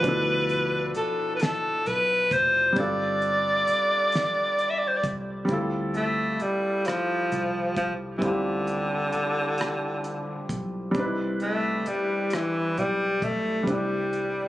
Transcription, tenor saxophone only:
0, 0, Header, 1, 2, 480
1, 0, Start_track
1, 0, Tempo, 909091
1, 21, Time_signature, 6, 3, 24, 8
1, 7645, End_track
2, 0, Start_track
2, 0, Title_t, "Tenor saxophone"
2, 0, Program_c, 0, 66
2, 0, Note_on_c, 0, 71, 107
2, 481, Note_off_c, 0, 71, 0
2, 510, Note_on_c, 0, 69, 87
2, 694, Note_off_c, 0, 69, 0
2, 717, Note_on_c, 0, 71, 73
2, 747, Note_on_c, 0, 69, 97
2, 755, Note_off_c, 0, 71, 0
2, 988, Note_on_c, 0, 71, 107
2, 996, Note_off_c, 0, 69, 0
2, 1232, Note_on_c, 0, 72, 93
2, 1239, Note_off_c, 0, 71, 0
2, 1469, Note_on_c, 0, 74, 107
2, 1477, Note_off_c, 0, 72, 0
2, 2483, Note_on_c, 0, 76, 79
2, 2491, Note_off_c, 0, 74, 0
2, 2526, Note_on_c, 0, 74, 86
2, 2534, Note_off_c, 0, 76, 0
2, 2577, Note_on_c, 0, 72, 79
2, 2585, Note_off_c, 0, 74, 0
2, 2624, Note_on_c, 0, 74, 74
2, 2632, Note_off_c, 0, 72, 0
2, 2666, Note_off_c, 0, 74, 0
2, 3149, Note_on_c, 0, 57, 92
2, 3390, Note_on_c, 0, 55, 80
2, 3398, Note_off_c, 0, 57, 0
2, 3624, Note_on_c, 0, 53, 88
2, 3632, Note_off_c, 0, 55, 0
2, 4100, Note_off_c, 0, 53, 0
2, 4104, Note_on_c, 0, 53, 76
2, 4188, Note_off_c, 0, 53, 0
2, 4318, Note_on_c, 0, 52, 57
2, 4346, Note_on_c, 0, 50, 82
2, 4354, Note_off_c, 0, 52, 0
2, 5543, Note_off_c, 0, 50, 0
2, 6032, Note_on_c, 0, 57, 95
2, 6271, Note_on_c, 0, 55, 80
2, 6279, Note_off_c, 0, 57, 0
2, 6519, Note_on_c, 0, 52, 88
2, 6527, Note_off_c, 0, 55, 0
2, 6753, Note_on_c, 0, 55, 89
2, 6761, Note_off_c, 0, 52, 0
2, 6991, Note_on_c, 0, 57, 87
2, 6999, Note_off_c, 0, 55, 0
2, 7226, Note_off_c, 0, 57, 0
2, 7237, Note_on_c, 0, 55, 79
2, 7645, Note_off_c, 0, 55, 0
2, 7645, End_track
0, 0, End_of_file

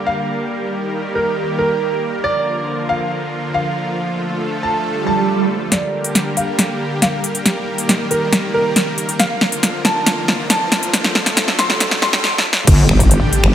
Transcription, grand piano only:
0, 0, Header, 1, 2, 480
1, 0, Start_track
1, 0, Key_signature, -2, "minor"
1, 0, Tempo, 434783
1, 552, Time_signature, 4, 2, 24, 8
1, 14956, End_track
2, 0, Start_track
2, 0, Title_t, "Grand piano"
2, 0, Program_c, 0, 0
2, 72, Note_on_c, 0, 77, 82
2, 697, Note_off_c, 0, 77, 0
2, 1272, Note_on_c, 0, 70, 80
2, 1517, Note_off_c, 0, 70, 0
2, 1751, Note_on_c, 0, 70, 84
2, 2377, Note_off_c, 0, 70, 0
2, 2471, Note_on_c, 0, 74, 92
2, 3097, Note_off_c, 0, 74, 0
2, 3192, Note_on_c, 0, 77, 85
2, 3817, Note_off_c, 0, 77, 0
2, 3912, Note_on_c, 0, 77, 83
2, 4537, Note_off_c, 0, 77, 0
2, 5113, Note_on_c, 0, 81, 85
2, 5358, Note_off_c, 0, 81, 0
2, 5593, Note_on_c, 0, 81, 86
2, 6217, Note_off_c, 0, 81, 0
2, 6312, Note_on_c, 0, 74, 85
2, 6937, Note_off_c, 0, 74, 0
2, 7032, Note_on_c, 0, 77, 87
2, 7657, Note_off_c, 0, 77, 0
2, 7751, Note_on_c, 0, 77, 83
2, 8376, Note_off_c, 0, 77, 0
2, 8951, Note_on_c, 0, 70, 84
2, 9197, Note_off_c, 0, 70, 0
2, 9431, Note_on_c, 0, 70, 91
2, 10056, Note_off_c, 0, 70, 0
2, 10151, Note_on_c, 0, 77, 96
2, 10776, Note_off_c, 0, 77, 0
2, 10872, Note_on_c, 0, 81, 90
2, 11497, Note_off_c, 0, 81, 0
2, 11592, Note_on_c, 0, 81, 92
2, 12217, Note_off_c, 0, 81, 0
2, 12791, Note_on_c, 0, 84, 92
2, 13037, Note_off_c, 0, 84, 0
2, 13272, Note_on_c, 0, 84, 97
2, 13512, Note_off_c, 0, 84, 0
2, 14956, End_track
0, 0, End_of_file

